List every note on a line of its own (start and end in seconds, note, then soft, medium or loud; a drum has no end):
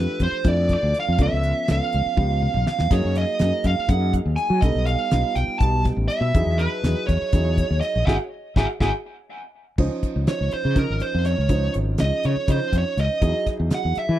0.00 0.41 F3 medium
0.00 0.41 A3 soft
0.00 0.41 D4 medium
0.00 0.41 G4 medium
0.00 0.23 B4 loud
0.20 0.30 F2 medium
0.20 0.47 C5 medium
0.20 kick medium
0.20 closed hi-hat medium
0.32 muted fretless electric bass stroke soft
0.44 0.74 F2 loud
0.44 1.13 F3 medium
0.44 1.13 A3 medium
0.44 1.13 D4 medium
0.44 1.13 E4 medium
0.44 0.72 D5 medium
0.44 kick loud
0.44 closed hi-hat medium
0.69 kick medium
0.69 snare soft
0.69 closed hi-hat medium
0.74 0.95 D5 medium
0.83 0.92 D2 medium
0.94 snare soft
0.94 closed hi-hat medium
1.00 1.22 F5 medium
1.08 1.17 F2 medium
1.18 1.28 C#2 loud
1.18 1.64 F3 medium
1.18 1.64 B3 medium
1.18 1.64 C#4 medium
1.18 1.64 A4 medium
1.18 kick medium
1.18 closed hi-hat medium
1.23 1.67 E5 medium
1.32 1.51 C#2 medium
1.43 closed hi-hat medium
1.68 1.79 C#2 medium
1.68 2.13 F3 medium
1.68 2.13 B3 medium
1.68 2.14 C#4 medium
1.68 2.14 A4 medium
1.68 snare loud
1.68 closed hi-hat medium
1.72 2.64 F5 medium
1.92 2.03 C#2 medium
1.92 closed hi-hat medium
2.17 2.46 C#2 loud
2.17 2.85 F3 medium
2.17 2.85 B3 medium
2.17 2.85 C#4 medium
2.17 2.85 G4 medium
2.17 kick loud
2.17 high tom medium
2.42 mid tom medium
2.54 2.65 B1 medium
2.54 mid tom medium
2.67 2.92 F5 medium
2.67 snare medium
2.79 2.89 E2 medium
2.79 snare medium
2.90 3.01 F#2 medium
2.90 3.36 F#3 medium
2.90 3.36 A#3 medium
2.90 3.36 D#4 medium
2.90 3.36 G#4 medium
2.90 3.14 C#5 medium
2.90 kick loud
2.90 closed hi-hat medium
2.90 crash medium
3.05 3.24 F#2 medium
3.15 3.66 D#5 medium
3.15 snare soft
3.15 closed hi-hat medium
3.39 3.51 F#2 medium
3.39 3.85 F#3 medium
3.39 3.86 A#3 medium
3.39 3.86 D#4 medium
3.39 3.86 G#4 medium
3.39 snare loud
3.39 closed hi-hat medium
3.64 3.74 F#2 medium
3.64 3.89 F5 medium
3.64 kick medium
3.64 closed hi-hat medium
3.79 muted fretless electric bass stroke soft
3.88 4.18 F#2 loud
3.88 4.58 F#3 medium
3.88 4.58 A#3 medium
3.88 4.58 D#4 medium
3.88 4.58 G#4 medium
3.88 4.12 F#5 medium
3.88 kick loud
3.88 closed hi-hat medium
4.13 kick medium
4.13 closed hi-hat medium
4.25 4.35 D#2 medium
4.36 4.60 G#5 medium
4.36 closed hi-hat medium
4.50 4.60 F#3 medium
4.61 4.72 B1 loud
4.61 5.09 G3 medium
4.61 5.09 B3 medium
4.61 5.09 D#4 medium
4.61 5.09 A4 medium
4.61 4.85 D#5 medium
4.61 kick loud
4.61 closed hi-hat medium
4.75 4.95 B1 medium
4.86 5.38 F5 medium
4.86 closed hi-hat medium
5.11 5.22 B1 medium
5.11 5.58 G3 medium
5.11 5.58 B3 medium
5.11 5.58 D#4 medium
5.11 5.58 F4 medium
5.11 snare loud
5.11 closed hi-hat medium
5.35 5.46 B1 medium
5.35 5.59 G5 medium
5.35 snare soft
5.35 closed hi-hat medium
5.59 5.90 B1 loud
5.59 6.29 G3 medium
5.59 6.29 B3 medium
5.59 6.29 D#4 medium
5.59 6.30 G4 medium
5.59 5.83 A5 loud
5.59 kick medium
5.59 closed hi-hat medium
5.85 kick medium
5.85 snare soft
5.85 closed hi-hat medium
5.96 6.07 A1 loud
6.08 6.60 E5 loud
6.08 closed hi-hat medium
6.21 6.31 B2 medium
6.34 6.44 E2 loud
6.34 6.81 F#3 medium
6.34 6.81 D#4 medium
6.34 6.81 E4 medium
6.34 6.81 G#4 medium
6.34 kick loud
6.34 closed hi-hat medium
6.46 6.66 E2 medium
6.59 7.05 B4 medium
6.59 closed hi-hat medium
6.83 6.93 E2 medium
6.83 7.30 F#3 medium
6.83 7.30 D#4 medium
6.83 7.30 E4 medium
6.83 7.30 G#4 medium
6.83 snare loud
6.83 closed hi-hat medium
7.07 7.18 E2 medium
7.07 7.80 C#5 medium
7.07 kick medium
7.07 closed hi-hat medium
7.22 muted fretless electric bass stroke soft
7.33 7.62 E2 loud
7.33 8.01 F#3 medium
7.33 8.01 D#4 medium
7.33 8.02 E4 medium
7.33 8.02 G#4 medium
7.33 kick loud
7.33 snare soft
7.33 closed hi-hat medium
7.58 kick medium
7.58 closed hi-hat medium
7.70 7.80 D#2 loud
7.81 8.06 D#5 medium
7.81 closed hi-hat medium
7.95 8.05 A#1 medium
8.06 8.16 G#1 loud
8.06 8.15 E4 loud
8.06 8.15 F#4 loud
8.06 8.15 G#4 medium
8.06 8.14 E5 medium
8.06 8.15 F#5 loud
8.06 8.15 G#5 medium
8.06 kick medium
8.06 snare medium
8.56 8.65 G#1 medium
8.56 8.65 E4 medium
8.56 8.65 F#4 medium
8.56 8.65 G#4 medium
8.56 8.65 E5 medium
8.56 8.65 F#5 loud
8.56 8.65 G#5 medium
8.56 kick loud
8.56 snare loud
8.80 8.90 G#1 loud
8.80 8.89 E4 medium
8.80 8.88 F#4 medium
8.80 8.88 G#4 loud
8.80 8.89 E5 medium
8.80 8.89 F#5 medium
8.80 8.89 G#5 medium
8.80 kick medium
8.80 snare medium
9.78 9.88 C#2 medium
9.78 10.24 F3 medium
9.78 10.24 C#4 medium
9.78 10.24 D#4 medium
9.78 10.24 C5 loud
9.78 kick loud
9.78 crash medium
10.02 muted fretless electric bass stroke soft
10.02 kick medium
10.02 closed hi-hat medium
10.16 10.25 C#2 medium
10.27 10.73 F3 medium
10.27 10.73 C#4 medium
10.27 10.73 D#4 soft
10.27 10.73 C5 medium
10.27 10.52 C#5 medium
10.27 snare loud
10.27 closed hi-hat medium
10.41 10.50 C#2 medium
10.51 10.77 C5 medium
10.51 muted fretless electric bass stroke soft
10.51 closed hi-hat medium
10.65 10.84 C#3 medium
10.75 11.44 F3 medium
10.75 11.44 C#4 medium
10.75 11.44 D#4 medium
10.75 11.45 A#4 medium
10.75 11.02 A#4 medium
10.75 kick loud
10.75 closed hi-hat medium
10.90 10.99 G#1 medium
11.00 11.25 C5 medium
11.00 muted fretless electric bass stroke soft
11.00 closed hi-hat medium
11.14 11.34 F2 medium
11.25 11.72 C#5 medium
11.25 snare soft
11.25 closed hi-hat medium
11.38 11.68 C#2 medium
11.49 11.96 F3 medium
11.49 11.96 C#4 medium
11.49 11.96 D#4 medium
11.49 11.96 C5 medium
11.49 kick loud
11.49 closed hi-hat medium
11.74 11.95 G#1 medium
11.74 closed hi-hat medium
11.98 12.10 C#2 medium
11.98 12.44 F3 medium
11.98 12.45 C#4 soft
11.98 12.45 D#4 medium
11.98 12.45 G#4 medium
11.98 12.24 D#5 loud
11.98 snare loud
11.98 closed hi-hat medium
12.23 12.34 C#3 medium
12.23 12.49 C#5 medium
12.23 closed hi-hat medium
12.36 muted fretless electric bass stroke soft
12.48 12.58 C#3 loud
12.48 13.16 F3 medium
12.48 13.16 C#4 medium
12.48 13.17 D#4 medium
12.48 12.74 C5 medium
12.48 13.17 D#5 medium
12.48 kick loud
12.48 snare soft
12.48 closed hi-hat medium
12.72 12.82 F2 medium
12.72 kick medium
12.72 snare soft
12.72 closed hi-hat medium
12.78 12.99 C#5 medium
12.97 13.07 C#2 medium
12.97 13.45 D#5 medium
12.97 snare soft
12.97 closed hi-hat medium
13.21 13.31 E2 medium
13.21 13.68 F#3 medium
13.21 13.68 D#4 medium
13.21 13.67 E4 medium
13.21 13.68 G#4 medium
13.21 kick loud
13.21 closed hi-hat medium
13.46 muted fretless electric bass stroke soft
13.46 kick medium
13.46 snare soft
13.46 closed hi-hat medium
13.60 13.69 E2 medium
13.70 14.16 F#3 medium
13.70 14.16 D#4 medium
13.70 14.16 E4 medium
13.70 14.16 G#4 medium
13.70 snare loud
13.70 closed hi-hat medium
13.75 13.97 F#5 loud
13.85 13.94 E2 medium
13.95 14.19 E5 medium
13.95 muted fretless electric bass stroke soft
13.95 snare soft
13.95 closed hi-hat medium
14.09 14.19 E3 medium